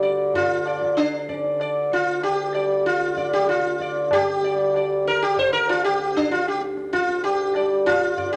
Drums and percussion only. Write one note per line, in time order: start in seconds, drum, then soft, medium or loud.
0.03 tabla te medium
0.34 tabla tin medium
0.34 tabla ge medium
0.65 tabla na medium
0.82 tabla ke medium
0.98 tabla te medium
1.14 tabla te medium
1.29 tabla ke medium
1.44 tabla te medium
1.60 tabla na medium
1.92 tabla ke medium
2.23 tabla na medium
2.54 tabla na medium
2.85 tabla te medium
3.01 tabla te medium
3.17 tabla ke medium
3.33 tabla te medium
3.47 tabla te medium
3.64 tabla te medium
3.80 tabla ke medium
3.95 tabla te medium
4.11 tabla na loud
4.11 tabla ge medium
4.43 tabla te medium
4.74 tabla na medium
5.05 tabla te medium
5.36 tabla tin medium
5.36 tabla ge medium
5.68 tabla na medium
5.99 tabla te medium
6.14 tabla te medium
6.30 tabla ke medium
6.45 tabla te medium
6.61 tabla te medium
6.77 tabla te medium
6.93 tabla ke medium
7.09 tabla te medium
7.24 tabla na medium
7.55 tabla na medium
7.86 tabla na medium
7.86 tabla ge medium
8.17 tabla ge medium